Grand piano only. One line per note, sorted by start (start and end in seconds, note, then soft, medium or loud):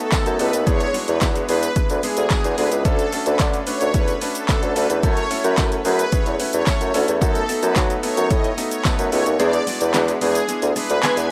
0.12 0.35 A3 medium
0.12 0.35 B3 medium
0.12 0.35 D#4 medium
0.12 0.35 F#4 medium
0.12 0.35 A4 loud
0.39 0.62 A3 medium
0.39 0.62 B3 medium
0.39 0.62 D#4 medium
0.39 0.62 F#4 medium
0.39 0.62 A4 medium
0.66 0.89 G#3 loud
0.66 0.89 B3 medium
0.66 0.89 D4 medium
0.66 0.89 E4 medium
0.66 0.89 G#4 loud
0.94 1.16 G#3 medium
0.94 1.17 B3 medium
0.94 1.17 D4 medium
0.94 1.17 E4 medium
0.94 1.17 F#4 medium
1.21 1.44 G#3 loud
1.21 1.44 B3 medium
1.21 1.44 D4 medium
1.21 1.44 E4 medium
1.21 1.44 F#4 loud
1.49 1.71 G#3 medium
1.49 1.71 B3 medium
1.49 1.71 D4 medium
1.49 1.71 E4 medium
1.49 1.71 G#4 medium
1.76 1.98 G#3 medium
1.76 1.99 B3 medium
1.76 1.99 D4 medium
1.76 1.99 E4 medium
1.76 1.99 B4 medium
2.03 2.26 G#3 medium
2.03 2.26 B3 medium
2.03 2.26 D4 medium
2.03 2.26 E4 medium
2.03 2.26 G#4 medium
2.30 2.53 G#3 loud
2.30 2.53 B3 medium
2.30 2.53 D4 medium
2.30 2.53 E4 medium
2.30 2.53 F#4 loud
2.58 2.80 G#3 medium
2.58 2.80 B3 medium
2.58 2.80 D4 medium
2.58 2.81 E4 medium
2.58 2.81 G#4 medium
2.85 3.08 A3 loud
2.85 3.08 C#4 medium
2.85 3.08 D4 medium
2.85 3.08 F#4 medium
2.85 3.08 A4 loud
3.13 3.35 A3 medium
3.13 3.35 C#4 medium
3.13 3.35 D4 medium
3.13 3.35 F#4 medium
3.13 3.35 A4 medium
3.40 3.62 A3 loud
3.40 3.62 C#4 medium
3.40 3.62 D4 medium
3.40 3.62 F#4 medium
3.40 3.62 A4 loud
3.67 3.89 A3 medium
3.67 3.89 C#4 medium
3.67 3.90 D4 medium
3.67 3.90 F#4 medium
3.67 3.90 B4 medium
3.94 4.17 A3 medium
3.94 4.17 C#4 medium
3.94 4.17 D4 medium
3.94 4.17 F#4 medium
3.94 4.17 A4 medium
4.21 4.44 A3 medium
4.21 4.44 C#4 medium
4.21 4.44 D4 medium
4.21 4.44 F#4 medium
4.21 4.44 B4 medium
4.49 4.71 A3 loud
4.49 4.71 C#4 medium
4.49 4.71 D4 medium
4.49 4.71 F#4 medium
4.49 4.71 B4 loud
4.76 4.98 A3 medium
4.76 4.98 C#4 medium
4.76 4.98 D4 medium
4.76 4.99 F#4 medium
4.76 4.99 A4 medium
5.03 5.26 A3 medium
5.03 5.26 C#4 medium
5.03 5.26 E4 medium
5.03 5.26 F#4 medium
5.03 5.26 A4 loud
5.30 5.53 A3 medium
5.30 5.53 C#4 medium
5.30 5.53 E4 medium
5.30 5.53 F#4 medium
5.30 5.53 A4 medium
5.57 5.80 A3 loud
5.57 5.80 C#4 medium
5.57 5.80 E4 medium
5.57 5.80 F#4 medium
5.57 5.80 A4 loud
5.85 6.07 A3 medium
5.85 6.08 C#4 medium
5.85 6.08 E4 medium
5.85 6.08 F#4 medium
5.85 6.08 G#4 medium
6.12 6.35 A3 medium
6.12 6.35 C#4 medium
6.12 6.35 E4 medium
6.12 6.35 F#4 medium
6.12 6.35 G#4 medium
6.40 6.62 A3 medium
6.40 6.62 C#4 medium
6.40 6.62 E4 medium
6.40 6.62 F#4 medium
6.40 6.62 B4 medium
6.67 6.89 A3 loud
6.67 6.89 C#4 medium
6.67 6.89 E4 medium
6.67 6.90 F#4 medium
6.67 6.90 A4 loud
6.94 7.17 A3 medium
6.94 7.17 C#4 medium
6.94 7.17 E4 medium
6.94 7.17 F#4 medium
6.94 7.17 A4 loud
7.21 7.44 A3 loud
7.21 7.44 B3 medium
7.21 7.44 D#4 medium
7.21 7.44 F#4 medium
7.21 7.44 A4 loud
7.48 7.71 A3 medium
7.48 7.71 B3 medium
7.48 7.71 D#4 medium
7.48 7.71 F#4 medium
7.48 7.71 A4 medium
7.76 7.98 A3 loud
7.76 7.98 B3 medium
7.76 7.99 D#4 medium
7.76 7.99 F#4 medium
7.76 7.99 A4 loud
8.03 8.25 A3 medium
8.03 8.26 B3 medium
8.03 8.26 D#4 medium
8.03 8.26 F#4 medium
8.03 8.26 A4 medium
8.30 8.53 A3 medium
8.30 8.53 B3 medium
8.30 8.53 D#4 medium
8.30 8.53 F#4 medium
8.30 8.53 A4 medium
8.57 8.80 A3 medium
8.57 8.80 B3 medium
8.57 8.80 D#4 medium
8.57 8.80 F#4 medium
8.57 8.80 A4 medium
8.84 9.07 A3 loud
8.84 9.07 B3 medium
8.84 9.07 D#4 medium
8.84 9.07 F#4 medium
8.84 9.08 A4 loud
9.11 9.34 A3 medium
9.11 9.35 B3 medium
9.11 9.35 D#4 medium
9.11 9.35 F#4 medium
9.11 9.35 A4 medium
9.39 9.62 G#3 medium
9.39 9.62 B3 medium
9.39 9.62 D4 medium
9.39 9.62 E4 medium
9.39 9.62 G#4 loud
9.67 9.89 G#3 medium
9.67 9.89 B3 medium
9.67 9.89 D4 medium
9.67 9.90 E4 medium
9.67 9.90 F#4 medium
9.94 10.17 G#3 loud
9.94 10.17 B3 medium
9.94 10.17 D4 medium
9.94 10.17 E4 medium
9.94 10.17 F#4 loud
10.21 10.44 G#3 medium
10.21 10.44 B3 medium
10.21 10.44 D4 medium
10.21 10.44 E4 medium
10.21 10.44 G#4 medium
10.48 10.71 G#3 medium
10.48 10.71 B3 medium
10.48 10.71 D4 medium
10.48 10.71 E4 medium
10.48 10.71 G#4 medium
10.76 10.98 G#3 medium
10.76 10.98 B3 medium
10.76 10.98 D4 medium
10.76 10.99 E4 medium
10.76 10.99 G#4 medium
11.03 11.26 G#3 loud
11.03 11.26 B3 medium
11.03 11.26 D4 medium
11.03 11.26 E4 medium
11.03 11.26 G#4 loud